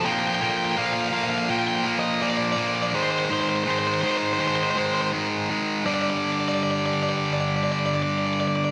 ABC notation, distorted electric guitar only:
X:1
M:4/4
L:1/8
Q:1/4=83
K:Gm
V:1 name="Distorted electric guitar" clef=bass
[B,,F,B,] [B,,F,B,] [B,,F,B,] [B,,F,B,] [B,,F,B,] [B,,F,B,] [B,,F,B,] [B,,F,B,] | [_A,,E,_A,] [A,,E,A,] [A,,E,A,] [A,,E,A,] [A,,E,A,] [A,,E,A,] [A,,E,A,] [A,,E,A,] | [G,,D,G,]8 |]